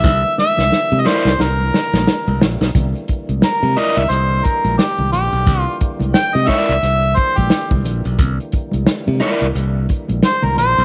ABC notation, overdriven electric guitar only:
X:1
M:4/4
L:1/8
Q:"Swing 16ths" 1/4=88
K:Cmix
V:1 name="Overdriven electric guitar"
z3 [EBd] z4 | z3 [EBd] z4 | z3 [EBd] z4 | z3 [EBd] z4 |]